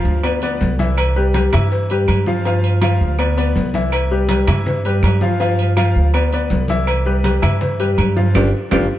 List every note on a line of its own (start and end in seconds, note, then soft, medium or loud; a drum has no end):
0.00 0.17 F3 medium
0.00 0.17 F4 medium
0.00 0.17 F5 medium
0.04 0.56 D2 loud
0.04 high conga soft
0.23 0.39 B3 medium
0.23 0.39 B4 medium
0.23 0.39 D5 medium
0.23 cowbell loud
0.23 high conga soft
0.23 low agogo loud
0.23 claves medium
0.42 0.73 B3 medium
0.42 0.73 B4 medium
0.42 0.73 D5 medium
0.42 high conga soft
0.42 low agogo medium
0.61 1.47 C2 loud
0.61 cowbell medium
0.61 high conga medium
0.79 1.09 E3 medium
0.79 1.10 E4 medium
0.79 1.10 E5 medium
0.79 cowbell medium
0.79 high conga medium
0.97 cowbell loud
0.97 high conga soft
0.97 low agogo loud
0.97 claves medium
1.16 1.31 G3 medium
1.16 1.31 G4 medium
1.16 1.31 B4 medium
1.16 high conga soft
1.34 1.50 G3 medium
1.34 1.50 G4 medium
1.34 1.50 B4 medium
1.34 cowbell medium
1.34 high conga loud
1.34 low agogo medium
1.53 2.05 G2 loud
1.53 1.83 E3 medium
1.53 1.84 E4 medium
1.53 1.84 E5 medium
1.53 cowbell medium
1.53 high conga soft
1.53 low conga medium
1.53 low agogo loud
1.53 claves medium
1.72 cowbell loud
1.72 high conga soft
1.90 2.20 G3 medium
1.90 2.21 G4 medium
1.90 2.21 B4 medium
1.90 high conga soft
1.90 low agogo medium
2.08 2.95 G2 loud
2.08 cowbell medium
2.08 high conga medium
2.08 low agogo loud
2.08 claves medium
2.26 2.42 F3 medium
2.26 2.42 F4 medium
2.26 2.43 F5 medium
2.26 high conga medium
2.45 2.76 F3 medium
2.45 2.76 F4 medium
2.45 2.76 F5 medium
2.45 cowbell loud
2.45 high conga soft
2.45 low agogo medium
2.64 high conga soft
2.64 low agogo medium
2.81 3.12 F3 medium
2.81 3.13 F4 medium
2.81 3.13 F5 medium
2.81 cowbell medium
2.81 high conga loud
2.81 low agogo loud
2.81 claves medium
3.01 3.52 D2 medium
3.01 high conga soft
3.19 3.34 B3 medium
3.19 3.34 B4 medium
3.19 3.34 D5 medium
3.19 cowbell loud
3.19 high conga soft
3.19 low agogo loud
3.19 claves medium
3.37 3.68 B3 medium
3.37 3.68 B4 medium
3.37 3.68 D5 medium
3.37 high conga soft
3.37 low agogo medium
3.56 4.42 C2 medium
3.56 cowbell medium
3.56 high conga medium
3.74 4.05 E3 medium
3.74 4.05 E4 medium
3.74 4.05 E5 medium
3.74 cowbell medium
3.74 high conga medium
3.92 cowbell loud
3.92 high conga soft
3.92 low agogo medium
3.92 claves medium
4.11 4.26 G3 medium
4.11 4.27 G4 medium
4.11 4.27 B4 medium
4.11 high conga soft
4.29 4.45 G3 medium
4.29 4.45 G4 medium
4.29 4.45 B4 medium
4.29 cowbell medium
4.29 high conga loud
4.29 low agogo loud
4.47 4.99 G2 medium
4.47 4.78 E3 medium
4.47 4.79 E4 loud
4.47 4.79 E5 medium
4.47 cowbell medium
4.47 high conga soft
4.47 low conga loud
4.47 low agogo loud
4.47 claves medium
4.66 cowbell loud
4.66 high conga soft
4.66 low conga medium
4.85 5.15 G3 medium
4.85 5.16 G4 medium
4.85 5.16 B4 medium
4.85 high conga soft
4.85 low agogo medium
5.03 5.90 G2 loud
5.03 cowbell medium
5.03 high conga medium
5.03 low timbale medium
5.03 low agogo loud
5.03 claves medium
5.21 5.37 F3 medium
5.21 5.37 F4 medium
5.21 5.37 F5 medium
5.21 high conga medium
5.40 5.71 F3 medium
5.40 5.71 F4 medium
5.40 5.71 F5 medium
5.40 cowbell loud
5.40 high conga soft
5.40 low agogo medium
5.58 high conga soft
5.58 low agogo medium
5.77 6.07 F3 medium
5.77 6.07 F4 medium
5.77 6.08 F5 medium
5.77 cowbell medium
5.77 high conga loud
5.77 low agogo loud
5.77 claves medium
5.96 6.47 D2 medium
5.96 high conga soft
6.14 6.29 B3 medium
6.14 6.29 B4 medium
6.14 6.30 D5 medium
6.14 cowbell loud
6.14 high conga soft
6.14 low agogo loud
6.14 claves medium
6.32 6.63 B3 medium
6.32 6.63 B4 medium
6.32 6.64 D5 medium
6.32 high conga soft
6.32 low agogo medium
6.50 7.37 C2 medium
6.50 cowbell medium
6.50 high conga medium
6.68 7.00 E3 medium
6.68 7.00 E4 medium
6.68 7.00 E5 medium
6.68 cowbell medium
6.68 high conga medium
6.87 cowbell loud
6.87 high conga soft
6.87 low agogo loud
6.87 claves medium
7.05 7.21 G3 medium
7.05 7.21 G4 medium
7.05 7.22 B4 medium
7.05 high conga soft
7.24 7.40 G3 medium
7.24 7.40 G4 medium
7.24 7.40 B4 medium
7.24 cowbell medium
7.24 high conga medium
7.24 low agogo medium
7.42 7.95 G2 medium
7.42 7.73 E3 medium
7.42 7.73 E4 medium
7.42 7.73 E5 medium
7.42 cowbell medium
7.42 high conga soft
7.42 low conga medium
7.42 low agogo loud
7.42 claves medium
7.61 cowbell loud
7.61 high conga soft
7.61 low conga medium
7.80 8.10 G3 medium
7.80 8.10 G4 medium
7.80 8.11 B4 medium
7.80 high conga soft
7.80 low agogo medium
7.98 8.33 G2 medium
7.98 cowbell medium
7.98 high conga medium
7.98 low agogo loud
7.98 claves medium
8.17 8.32 F3 medium
8.17 8.32 F4 medium
8.17 8.32 F5 medium
8.17 high conga medium
8.34 8.49 G1 loud
8.34 8.47 D4 loud
8.34 8.47 F4 medium
8.34 8.47 G4 medium
8.34 cowbell loud
8.34 high conga loud
8.34 high timbale loud
8.34 claves loud
8.71 8.86 G1 loud
8.71 8.84 D4 loud
8.71 8.84 F4 loud
8.71 8.84 G4 loud
8.71 cowbell loud
8.71 high conga loud
8.71 high timbale loud
8.71 claves loud